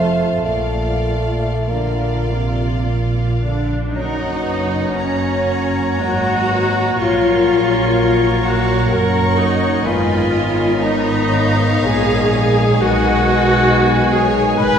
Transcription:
0.00 0.46 F1 soft
0.00 0.46 F2 soft
0.00 0.44 A3 soft
0.00 0.43 F4 soft
0.00 0.45 C5 soft
0.00 0.44 F5 soft
0.44 3.71 A#1 soft
0.44 1.53 A#2 soft
0.44 1.69 A3 soft
0.44 1.65 F4 soft
0.44 1.67 D5 soft
0.44 1.66 F5 soft
1.67 2.23 D3 soft
1.67 2.85 A#3 soft
1.67 3.38 F4 soft
1.67 3.71 D5 soft
1.67 3.71 F5 soft
2.27 2.84 C3 soft
2.84 3.42 A#2 soft
3.41 3.95 D3 soft
3.41 3.91 D4 soft
3.41 3.97 D5 soft
3.92 5.97 F#2 soft
3.92 9.81 F#3 soft
3.92 9.82 F#3 soft
3.92 9.81 A#3 soft
3.92 4.94 D#4 medium
3.92 4.41 A#4 soft
3.92 9.82 C#5 soft
3.92 4.91 C#5 soft
3.92 4.94 D#5 soft
3.92 4.91 F#5 soft
3.92 9.87 A#5 soft
3.96 5.98 F#1 soft
4.46 4.95 B4 soft
4.94 6.01 C#4 medium
4.94 6.01 C#5 soft
4.94 6.03 C#5 soft
4.94 6.01 F#5 soft
4.94 5.47 A#5 soft
5.48 6.97 A#5 soft
6.00 7.00 G#1 soft
6.00 7.00 G#2 soft
6.00 6.99 F#4 medium
6.00 6.51 A#4 soft
6.00 7.00 D#5 soft
6.00 6.99 F#5 medium
6.51 6.99 B4 soft
6.98 8.88 A#1 soft
6.98 8.88 A#2 soft
6.98 8.40 F4 medium
6.98 7.92 C#5 soft
6.98 8.46 F5 medium
6.98 8.88 C#6 soft
7.44 7.94 G#4 soft
7.93 9.86 A#4 soft
7.93 8.42 C#5 soft
8.42 8.91 F#4 medium
8.42 8.91 F5 soft
8.42 8.95 F#5 medium
8.90 9.87 F#1 soft
8.90 9.87 F#2 soft
8.90 9.39 A#4 medium
8.90 9.87 F#5 soft
8.90 9.39 A#5 medium
8.90 9.85 C#6 soft
9.39 9.87 D#4 medium
9.39 9.89 D#5 soft
9.84 11.82 G#1 soft
9.84 11.83 G#2 medium
9.84 14.79 D#3 soft
9.84 14.79 G#3 medium
9.84 12.66 B3 medium
9.84 10.81 F4 medium
9.84 10.33 B4 soft
9.84 14.79 D#5 medium
9.84 10.79 D#5 soft
9.84 10.54 F5 medium
9.84 10.80 G#5 soft
9.84 12.55 B5 soft
10.34 12.82 C#5 soft
10.80 11.86 D#4 medium
10.80 11.31 D#5 medium
10.80 11.87 D#5 medium
10.80 11.86 A#5 soft
11.32 12.82 F5 medium
11.85 12.82 A#1 soft
11.85 12.82 A#2 soft
11.85 12.80 G#4 medium
11.85 12.83 G#5 medium
11.85 13.70 G#5 soft
12.81 14.55 B1 medium
12.81 14.55 B2 medium
12.81 14.79 D#4 medium
12.81 14.14 F#4 medium
12.81 13.71 B4 medium
12.81 13.27 D#5 medium
12.81 14.14 F#5 medium
12.81 14.79 G#5 medium
13.29 13.71 D#5 medium
13.71 14.57 G#4 medium
13.71 14.15 B4 medium
13.71 14.79 G#5 medium
14.12 14.57 G#4 medium
14.12 14.58 C#5 medium
14.12 14.59 G#5 medium
14.57 14.79 G#1 medium
14.57 14.79 G#2 medium
14.57 14.79 G#4 medium
14.57 14.79 B4 medium
14.57 14.79 D#5 medium
14.57 14.79 B5 medium

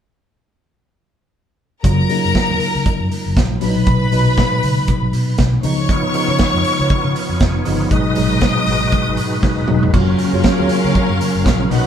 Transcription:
1.83 2.03 F#1 loud
1.83 2.06 C#3 medium
1.83 2.06 F#3 medium
1.83 2.06 A#3 medium
1.83 2.07 F4 medium
1.83 3.33 A#4 medium
1.83 3.32 A#5 loud
1.83 kick loud
1.83 closed hi-hat medium
2.09 2.98 C#3 medium
2.09 2.98 F#3 medium
2.09 2.98 A#3 medium
2.09 2.98 D#4 medium
2.09 open hi-hat medium
2.25 2.32 F#2 medium
2.35 kick loud
2.35 snare loud
2.35 closed hi-hat medium
2.50 2.58 D#2 medium
2.60 open hi-hat medium
2.75 2.83 C#2 medium
2.86 muted fingered electric bass stroke soft
2.86 kick loud
2.86 closed hi-hat medium
3.00 3.08 F#2 medium
3.11 open hi-hat medium
3.26 3.34 F#1 medium
3.37 3.55 A#1 medium
3.37 kick loud
3.37 snare loud
3.37 closed hi-hat medium
3.61 3.81 B1 medium
3.61 4.06 A#2 medium
3.61 4.06 B2 medium
3.61 4.06 F#3 medium
3.61 3.69 D4 medium
3.61 5.35 B4 medium
3.61 5.35 B5 medium
3.61 open hi-hat medium
3.69 4.09 D#4 medium
3.87 4.06 B1 loud
3.87 kick loud
3.87 closed hi-hat medium
4.11 4.31 B1 loud
4.11 5.01 A#2 medium
4.11 5.00 B2 medium
4.11 5.00 F#3 medium
4.11 5.01 D#4 medium
4.11 open hi-hat medium
4.37 kick loud
4.37 snare medium
4.37 closed hi-hat medium
4.63 4.82 C#2 medium
4.63 open hi-hat medium
4.88 kick medium
4.88 closed hi-hat medium
5.02 5.10 B1 medium
5.13 5.32 B2 medium
5.13 open hi-hat medium
5.38 5.58 B1 medium
5.38 kick loud
5.38 snare medium
5.38 closed hi-hat medium
5.63 6.01 C#2 medium
5.63 6.08 C#3 medium
5.63 6.08 F3 medium
5.63 6.08 B3 medium
5.63 6.08 D#4 loud
5.63 7.62 C#5 medium
5.63 7.62 C#6 medium
5.63 open hi-hat medium
5.89 7.89 B3 medium
5.89 9.90 D#4 medium
5.89 7.90 F4 medium
5.89 7.90 C#5 medium
5.89 kick loud
5.89 closed hi-hat medium
6.13 7.02 C#3 medium
6.13 7.02 F3 medium
6.13 7.03 B3 medium
6.13 7.03 D#4 medium
6.13 open hi-hat medium
6.28 6.37 C#3 loud
6.39 kick loud
6.39 snare loud
6.39 closed hi-hat medium
6.53 6.62 F2 medium
6.64 open hi-hat medium
6.79 6.87 C#2 medium
6.90 muted fingered electric bass stroke soft
6.90 kick loud
6.90 closed hi-hat medium
7.04 7.13 C#3 medium
7.16 open hi-hat medium
7.29 7.38 F2 medium
7.40 7.59 F1 medium
7.40 kick loud
7.40 snare medium
7.40 closed hi-hat medium
7.65 7.85 G1 medium
7.65 7.88 C#3 medium
7.65 7.88 F3 medium
7.65 7.88 B3 medium
7.65 7.88 D#4 medium
7.65 open hi-hat medium
7.91 8.10 G#1 loud
7.91 8.13 B2 medium
7.91 8.14 F#3 medium
7.91 8.14 G#3 medium
7.91 9.92 G#3 medium
7.91 8.14 D#4 medium
7.91 9.92 F#4 medium
7.91 9.92 B4 medium
7.91 9.65 D#5 medium
7.91 9.65 D#6 medium
7.91 kick loud
7.91 closed hi-hat medium
8.15 8.36 G#1 loud
8.15 8.23 A#2 medium
8.15 9.05 F#3 medium
8.15 9.05 G#3 medium
8.15 9.06 D#4 medium
8.15 open hi-hat medium
8.23 9.08 B2 medium
8.41 kick loud
8.41 snare loud
8.41 closed hi-hat medium
8.66 8.86 G#1 loud
8.66 open hi-hat medium
8.92 kick loud
8.92 closed hi-hat medium
9.07 9.15 G#1 medium
9.17 9.36 G#2 medium
9.17 open hi-hat medium
9.43 kick loud
9.43 snare medium
9.57 9.65 D#1 medium
9.67 9.83 E1 medium
9.67 9.90 B2 medium
9.67 9.90 F#3 medium
9.67 9.91 G#3 medium
9.67 9.91 D#4 medium
9.67 mid tom medium
9.83 9.91 F1 medium
9.83 floor tom medium
9.93 10.13 F#1 medium
9.93 10.27 C#3 medium
9.93 11.69 C#3 medium
9.93 11.69 F#3 medium
9.93 10.27 F#3 medium
9.93 10.27 A#3 medium
9.93 11.67 C#4 medium
9.93 11.87 C#4 medium
9.93 11.69 F4 medium
9.93 10.28 F4 medium
9.93 11.67 A#4 medium
9.93 11.67 F5 medium
9.93 kick loud
9.93 crash medium
10.19 open hi-hat medium
10.33 10.41 F#2 medium
10.33 10.54 C#3 medium
10.33 10.55 F#3 medium
10.33 10.55 A#3 medium
10.33 10.55 F4 medium
10.44 kick loud
10.44 snare loud
10.44 closed hi-hat medium
10.58 10.67 D#2 medium
10.58 11.44 C#3 medium
10.58 11.44 F#3 medium
10.58 11.44 A#3 medium
10.58 11.45 F4 medium
10.69 open hi-hat medium
10.84 10.92 C#2 medium
10.95 kick loud
10.95 closed hi-hat medium
11.09 11.17 F#2 medium
11.21 open hi-hat medium
11.35 11.43 F#1 medium
11.46 11.64 A#1 medium
11.46 kick loud
11.46 snare medium
11.46 closed hi-hat medium
11.70 11.87 B1 medium
11.70 11.87 A#2 medium
11.70 11.87 B2 medium
11.70 11.87 D#3 medium
11.70 11.87 F#3 medium
11.70 11.87 D#4 medium
11.70 11.87 F#4 medium
11.70 11.87 B4 medium
11.70 11.87 F#5 medium
11.70 open hi-hat medium

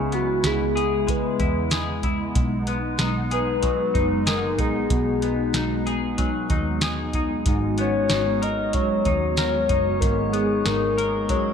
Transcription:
0.00 0.41 C#2 medium
0.00 2.32 C#3 medium
0.00 2.36 C#3 medium
0.00 1.07 G#3 medium
0.00 11.53 G#3 medium
0.00 0.12 B3 medium
0.00 11.53 B3 medium
0.00 0.43 E4 medium
0.00 2.32 E4 medium
0.00 0.16 G#4 medium
0.00 0.75 G#4 soft
0.12 2.67 B3 medium
0.12 0.48 F#4 medium
0.12 closed hi-hat soft
0.44 1.20 C#2 medium
0.44 1.38 E4 soft
0.44 1.11 G#4 medium
0.44 snare medium
0.44 closed hi-hat medium
0.76 1.71 G#4 medium
0.76 closed hi-hat soft
1.07 3.63 G#3 medium
1.07 2.05 B4 medium
1.07 kick medium
1.07 closed hi-hat medium
1.40 2.32 E2 medium
1.40 2.02 E4 medium
1.40 kick medium
1.40 closed hi-hat soft
1.71 3.31 G#4 medium
1.71 snare loud
1.71 closed hi-hat medium
2.03 2.42 E4 soft
2.03 kick medium
2.03 closed hi-hat soft
2.35 2.96 B1 medium
2.35 7.42 D#4 medium
2.35 kick loud
2.35 closed hi-hat medium
2.67 5.22 B3 medium
2.67 closed hi-hat soft
2.99 3.91 B1 medium
2.99 3.94 D#4 medium
2.99 snare loud
2.99 closed hi-hat medium
3.31 4.26 G#4 medium
3.31 4.24 B4 loud
3.31 closed hi-hat soft
3.63 6.18 F#3 medium
3.63 kick medium
3.63 closed hi-hat medium
3.94 4.58 F#1 medium
3.94 4.58 D#4 medium
3.94 kick medium
3.94 closed hi-hat soft
4.27 5.86 G#4 soft
4.27 4.62 A#4 medium
4.27 snare medium
4.27 closed hi-hat medium
4.58 4.89 A#1 medium
4.58 5.54 D#4 medium
4.58 5.87 G#4 medium
4.58 kick medium
4.58 closed hi-hat soft
4.90 5.52 B1 medium
4.90 7.46 B2 medium
4.90 kick loud
4.90 closed hi-hat medium
5.22 7.78 B3 soft
5.22 closed hi-hat medium
5.54 6.31 B1 medium
5.54 6.50 D#4 soft
5.54 snare medium
5.54 closed hi-hat medium
5.86 6.82 G#4 medium
5.86 closed hi-hat soft
6.18 8.73 F#3 medium
6.18 kick medium
6.18 closed hi-hat medium
6.50 7.48 D#2 medium
6.50 7.15 D#4 medium
6.50 kick medium
6.50 closed hi-hat soft
6.81 8.42 G#4 soft
6.81 snare loud
6.81 closed hi-hat medium
7.13 8.10 D#4 medium
7.13 kick medium
7.13 closed hi-hat soft
7.46 8.07 G#1 medium
7.46 10.00 G#2 medium
7.46 10.00 F#4 medium
7.46 kick loud
7.46 closed hi-hat medium
7.78 10.33 B3 medium
7.78 9.41 A#4 medium
7.78 8.45 C#5 loud
7.78 closed hi-hat soft
8.10 9.02 G#1 loud
8.10 9.05 D#4 soft
8.10 snare medium
8.10 closed hi-hat medium
8.42 9.37 A#4 medium
8.42 8.76 D#5 medium
8.42 closed hi-hat soft
8.73 11.29 F#3 medium
8.73 10.02 C#5 loud
8.73 kick medium
8.73 closed hi-hat medium
9.05 9.66 D#2 medium
9.05 9.68 D#4 medium
9.05 10.69 C#5 medium
9.05 kick medium
9.05 closed hi-hat soft
9.37 10.96 A#4 medium
9.37 snare medium
9.37 closed hi-hat medium
9.69 10.00 F#1 medium
9.69 10.65 D#4 medium
9.69 kick medium
9.69 closed hi-hat soft
10.00 10.63 G#1 medium
10.00 11.53 G#2 medium
10.00 11.53 G#4 medium
10.00 10.35 A#4 medium
10.00 kick loud
10.00 closed hi-hat medium
10.33 11.53 B3 medium
10.33 10.67 G#4 medium
10.33 closed hi-hat soft
10.66 11.42 G#1 medium
10.66 11.53 D#4 medium
10.66 11.31 A#4 medium
10.66 11.53 D#5 loud
10.66 snare medium
10.66 closed hi-hat medium
10.98 11.53 A#4 medium
10.98 closed hi-hat medium
11.29 11.53 F#3 medium
11.29 11.53 C#5 medium
11.29 kick medium
11.29 closed hi-hat medium

